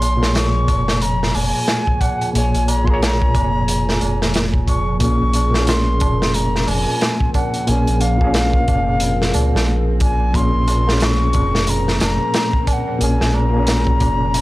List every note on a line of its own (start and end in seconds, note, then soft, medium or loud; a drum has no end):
0.00 0.66 A#1 medium
0.00 0.16 A#2 medium
0.00 14.41 F3 medium
0.00 0.16 A#3 medium
0.00 14.41 A#3 medium
0.00 0.17 G#4 medium
0.00 14.41 G#4 medium
0.00 0.18 C#5 medium
0.00 5.01 G#5 medium
0.00 0.36 C6 loud
0.00 closed hi-hat medium
0.00 tabla na medium
0.17 2.29 A#2 medium
0.17 2.31 A#3 medium
0.22 2.32 G#4 medium
0.22 2.34 C#5 medium
0.22 snare medium
0.22 tabla na medium
0.35 1.03 C#6 loud
0.35 snare loud
0.35 closed hi-hat medium
0.35 tabla na soft
0.68 1.32 F1 medium
0.68 kick medium
0.68 closed hi-hat medium
0.68 tabla na medium
0.88 snare medium
0.88 tabla na medium
1.02 1.37 A#5 loud
1.02 closed hi-hat medium
1.02 tabla na soft
1.23 snare soft
1.35 1.52 F1 loud
1.35 2.02 G#5 loud
1.35 open hi-hat medium
1.35 tabla na medium
1.56 tabla na medium
1.68 snare loud
1.68 closed hi-hat medium
1.68 tabla na soft
1.87 kick loud
2.01 2.34 F#5 medium
2.01 kick medium
2.01 closed hi-hat medium
2.01 tabla na medium
2.21 closed hi-hat soft
2.21 tabla na medium
2.33 2.52 A#1 loud
2.33 2.82 A#2 medium
2.33 2.83 A#3 medium
2.33 2.84 G#4 medium
2.33 2.70 G#5 loud
2.33 closed hi-hat medium
2.33 tabla na soft
2.38 2.85 C#5 medium
2.54 3.32 A#1 medium
2.54 closed hi-hat soft
2.68 2.86 A#5 loud
2.68 closed hi-hat medium
2.68 tabla na loud
2.84 4.96 A#2 medium
2.84 4.98 A#3 medium
2.84 2.91 C6 loud
2.84 kick medium
2.84 tabla na soft
2.90 4.99 G#4 medium
2.90 5.01 C#5 loud
2.90 3.03 A#5 loud
3.02 3.08 G#5 loud
3.02 snare loud
3.02 closed hi-hat medium
3.02 tabla na soft
3.07 4.42 A#5 loud
3.22 kick medium
3.35 3.99 F1 medium
3.35 kick loud
3.35 closed hi-hat medium
3.35 tabla na medium
3.56 tabla na soft
3.68 closed hi-hat medium
3.68 tabla na soft
3.89 snare soft
4.01 4.99 F1 medium
4.01 closed hi-hat medium
4.01 tabla na medium
4.22 snare soft
4.22 tabla na medium
4.34 snare loud
4.34 closed hi-hat medium
4.34 tabla na soft
4.54 kick medium
4.68 4.99 C#6 loud
4.68 kick loud
4.68 closed hi-hat medium
4.68 tabla na medium
4.89 tabla na medium
5.00 5.19 A#1 loud
5.00 5.49 A#2 medium
5.00 5.50 A#3 medium
5.00 14.41 C4 medium
5.00 5.51 G#4 medium
5.00 10.33 A#4 loud
5.00 5.70 C#6 loud
5.00 kick loud
5.00 closed hi-hat medium
5.00 tabla na soft
5.05 5.51 C#4 medium
5.22 5.99 A#1 medium
5.33 closed hi-hat medium
5.33 tabla na medium
5.51 7.63 A#2 medium
5.51 7.65 A#3 medium
5.51 snare medium
5.55 7.66 G#4 medium
5.55 tabla na soft
5.60 7.68 C#4 medium
5.67 6.36 C6 loud
5.67 snare loud
5.67 closed hi-hat loud
6.00 6.66 F1 medium
6.00 kick loud
6.00 closed hi-hat medium
6.00 tabla na medium
6.21 snare medium
6.21 tabla na medium
6.34 6.70 A#5 medium
6.34 closed hi-hat medium
6.34 tabla na soft
6.56 snare soft
6.67 6.85 F1 loud
6.67 7.34 G#5 loud
6.67 open hi-hat medium
6.67 tabla na loud
6.87 tabla na medium
7.01 snare loud
7.01 closed hi-hat medium
7.01 tabla na soft
7.20 kick medium
7.34 7.70 F#5 medium
7.34 kick medium
7.34 closed hi-hat medium
7.34 tabla na medium
7.54 closed hi-hat soft
7.54 tabla na medium
7.67 7.86 A#1 loud
7.67 8.16 A#2 medium
7.67 8.16 A#3 medium
7.67 8.17 G#4 medium
7.67 8.02 G#5 loud
7.67 closed hi-hat medium
7.67 tabla na soft
7.71 8.18 C#4 medium
7.87 8.66 A#1 medium
7.87 closed hi-hat soft
8.01 9.75 F5 loud
8.01 closed hi-hat medium
8.01 tabla na medium
8.18 10.30 A#2 medium
8.18 10.31 A#3 medium
8.18 kick medium
8.18 tabla na medium
8.24 10.34 C#4 medium
8.24 10.33 G#4 medium
8.34 snare loud
8.34 closed hi-hat medium
8.34 tabla na soft
8.53 kick medium
8.68 9.32 F1 medium
8.68 kick medium
8.68 closed hi-hat medium
8.68 tabla na medium
8.89 tabla na medium
9.00 closed hi-hat loud
9.00 tabla na soft
9.22 snare soft
9.34 9.52 C#2 medium
9.34 closed hi-hat medium
9.34 tabla na medium
9.54 10.32 A#1 medium
9.54 snare medium
9.54 tabla na medium
9.68 tabla na soft
10.00 10.37 G#5 medium
10.00 kick medium
10.00 closed hi-hat medium
10.00 tabla na medium
10.20 tabla na medium
10.34 10.52 A#1 loud
10.34 10.82 A#2 medium
10.34 10.83 A#3 medium
10.34 10.84 G#4 medium
10.34 14.41 A#4 medium
10.34 11.04 C6 loud
10.34 kick loud
10.34 closed hi-hat medium
10.34 tabla na soft
10.38 10.85 C#4 medium
10.55 11.32 A#1 medium
10.68 closed hi-hat medium
10.68 tabla na medium
10.84 12.96 A#2 medium
10.84 12.98 A#3 medium
10.84 tabla na soft
10.89 12.99 G#4 medium
10.89 snare medium
10.93 13.01 C#4 medium
11.00 11.71 C#6 loud
11.00 snare loud
11.00 closed hi-hat medium
11.00 tabla na soft
11.33 11.99 F1 medium
11.33 kick medium
11.33 closed hi-hat medium
11.33 tabla na medium
11.54 snare medium
11.54 tabla na medium
11.67 12.01 A#5 loud
11.67 closed hi-hat loud
11.67 tabla na soft
11.88 snare soft
12.00 12.19 F1 loud
12.00 12.70 A#5 loud
12.00 snare medium
12.00 closed hi-hat medium
12.00 tabla na loud
12.22 tabla na medium
12.34 snare loud
12.34 closed hi-hat medium
12.34 tabla na soft
12.53 kick medium
12.67 12.74 G#5 medium
12.67 kick medium
12.67 closed hi-hat medium
12.67 tabla na medium
12.73 13.03 F#5 medium
12.88 tabla na medium
12.99 13.19 A#1 loud
12.99 13.49 A#2 medium
12.99 13.49 A#3 medium
12.99 13.50 G#4 medium
12.99 13.36 G#5 loud
12.99 closed hi-hat medium
12.99 tabla na soft
13.04 13.51 C#4 medium
13.21 13.99 A#1 medium
13.21 snare soft
13.34 14.41 A#5 loud
13.34 tabla na loud
13.50 14.41 A#2 medium
13.50 14.41 A#3 medium
13.50 tabla na soft
13.56 14.41 C#4 medium
13.56 14.41 G#4 medium
13.67 snare loud
13.67 closed hi-hat medium
13.87 kick medium
14.00 14.41 F1 medium
14.00 kick loud
14.00 closed hi-hat medium
14.00 tabla na medium
14.21 tabla na medium
14.34 closed hi-hat medium
14.34 tabla na soft